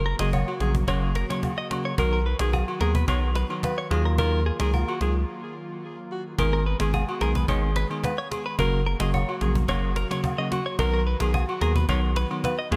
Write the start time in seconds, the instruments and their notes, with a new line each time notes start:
Already playing: analog synth bass F#1, analog synth pad C#3 F#3 A#3 F#4
0.06 clean electric guitar A#4
0.19 analog synth bass F#1, tine electric piano C#3 F#3 A#3 F#4, alto saxophone G#4, clean electric guitar D#5, cajon slap, high agogo
0.33 clean electric guitar C#5, cajon bass, low woodblock
0.48 alto saxophone F#4, cajon slap, high agogo
0.60 analog synth bass A#1, tine electric piano C#3 F#3 A#3 F#4, alto saxophone G#4, cajon slap
0.75 cajon bass
0.88 analog synth bass F#1, tine electric piano C#3 F#3 A#3 F#4, clean electric guitar C#5, cajon bass, high agogo
1.02 cajon slap
1.15 clean electric guitar A#4, cajon slap
1.30 tine electric piano C#3 F#3 A#3 F#4, clean electric guitar C#5, cajon slap, high agogo
1.43 cajon bass, low woodblock
1.57 clean electric guitar D#5, cajon slap
1.70 tine electric piano C#3 F#3 A#3 F#4, alto saxophone F#4, cajon slap, high agogo
1.85 clean electric guitar C#5, cajon slap
1.98 analog synth bass B1, tine electric piano D#3 F#3 B3 F#4, analog synth pad D#3 B3, alto saxophone A#4, cajon bass, high agogo
2.13 clean electric guitar A#4
2.26 clean electric guitar B4
2.39 analog synth bass B1, tine electric piano D#3 F#3 B3 F#4, alto saxophone G#4, cajon slap, high agogo
2.53 clean electric guitar G#4, cajon bass, low woodblock
2.68 alto saxophone F#4, cajon slap, high agogo
2.81 analog synth bass D#2, tine electric piano D#3 F#3 B3 F#4, alto saxophone G#4, clean electric guitar A#4, cajon slap
2.95 clean electric guitar B4, cajon bass
3.08 analog synth bass B1, tine electric piano D#3 F#3 B3 F#4, clean electric guitar C#5, cajon bass, high agogo
3.22 cajon slap
3.35 clean electric guitar B4, cajon slap
3.50 tine electric piano D#3 F#3 B3 F#4, cajon slap, high agogo
3.63 alto saxophone B4, cajon bass, cajon slap, low woodblock
3.77 clean electric guitar C#5, cajon slap
3.91 analog synth bass D#2, tine electric piano D#3 F#3 A#3 F4, analog synth pad A#3 F4, alto saxophone G#4, cajon slap, high agogo
4.05 clean electric guitar A#4, cajon slap
4.18 tine electric piano D#3 F#3 A#3 F4, alto saxophone A#4, cajon bass, high agogo
4.32 cajon slap
4.46 clean electric guitar G#4, cajon slap
4.60 analog synth bass C#2, tine electric piano D#3 F#3 A#3 F4, alto saxophone G#4, clean electric guitar A#4, cajon slap, high agogo
4.74 clean electric guitar A#4, cajon bass, low woodblock
4.88 alto saxophone F#4, cajon slap, high agogo
5.01 analog synth bass C#2, tine electric piano D#3 F#3 A#3 F4, alto saxophone G#4, cajon slap
5.16 cajon slap
6.12 alto saxophone F#4
6.38 analog synth bass G#1, tine electric piano D#3 G#3 B3 G#4, analog synth pad D#3 G#3 B3 G#4, alto saxophone A#4, cajon bass, high agogo
6.53 clean electric guitar A#4
6.66 clean electric guitar B4
6.80 analog synth bass G#1, tine electric piano D#3 G#3 B3 G#4, alto saxophone G#4, cajon slap, high agogo
6.94 clean electric guitar G#4, cajon bass, low woodblock
7.09 alto saxophone F#4, cajon slap, high agogo
7.21 analog synth bass B1, tine electric piano D#3 G#3 B3 G#4, alto saxophone G#4, clean electric guitar A#4, cajon slap
7.35 clean electric guitar B4, cajon bass
7.48 analog synth bass G#1, tine electric piano D#3 G#3 B3 G#4, clean electric guitar C#5, cajon bass, high agogo
7.62 cajon slap
7.76 clean electric guitar B4, cajon slap
7.90 tine electric piano D#3 G#3 B3 G#4, cajon slap, high agogo
8.04 alto saxophone B4, cajon bass, cajon slap, low woodblock
8.18 clean electric guitar C#5, cajon slap
8.31 alto saxophone G#4, cajon slap, high agogo
8.46 clean electric guitar B4, cajon slap
8.58 analog synth bass F#1, tine electric piano C#3 F#3 A#3 F#4, analog synth pad C#3 F#3 A#3 F#4, alto saxophone A#4, cajon bass, high agogo
8.73 cajon slap
8.86 clean electric guitar A#4
9.00 analog synth bass F#1, tine electric piano C#3 F#3 A#3 F#4, alto saxophone G#4, clean electric guitar D#5, cajon slap, high agogo
9.14 clean electric guitar C#5, cajon bass, low woodblock
9.29 alto saxophone F#4, cajon slap, high agogo
9.41 analog synth bass A#1, tine electric piano C#3 F#3 A#3 F#4, alto saxophone G#4, cajon slap
9.55 cajon bass
9.69 analog synth bass F#1, tine electric piano C#3 F#3 A#3 F#4, clean electric guitar C#5, cajon bass, high agogo
9.83 cajon slap
9.96 clean electric guitar A#4, cajon slap
10.10 tine electric piano C#3 F#3 A#3 F#4, clean electric guitar C#5, cajon slap, high agogo
10.24 cajon bass, low woodblock
10.38 tine electric piano C#3 F#3 A#3 F#4, clean electric guitar D#5, cajon slap
10.52 alto saxophone F#4, cajon slap, high agogo
10.66 clean electric guitar C#5, cajon slap
10.79 analog synth bass B1, tine electric piano D#3 F#3 B3 F#4, analog synth pad D#3 B3, alto saxophone A#4, cajon bass, high agogo
10.93 clean electric guitar A#4, cajon slap
11.07 clean electric guitar B4
11.20 analog synth bass B1, tine electric piano D#3 F#3 B3 F#4, alto saxophone G#4, cajon slap, high agogo
11.34 clean electric guitar G#4, cajon bass, low woodblock
11.49 alto saxophone F#4, cajon slap, high agogo
11.61 analog synth bass D#2, tine electric piano D#3 F#3 B3 F#4, alto saxophone G#4, clean electric guitar A#4, cajon slap
11.76 clean electric guitar B4, cajon bass
11.89 analog synth bass B1, tine electric piano D#3 F#3 B3 F#4, clean electric guitar C#5, cajon bass, high agogo
12.03 cajon slap
12.16 clean electric guitar B4, cajon slap
12.30 tine electric piano D#3 F#3 B3 F#4, cajon slap, high agogo
12.44 alto saxophone B4, cajon bass, cajon slap, low woodblock
12.58 clean electric guitar D#5, cajon slap
12.71 analog synth bass D#2, tine electric piano D#3 F#3 A#3 F4, analog synth pad A#3 F4, alto saxophone G#4, cajon slap, high agogo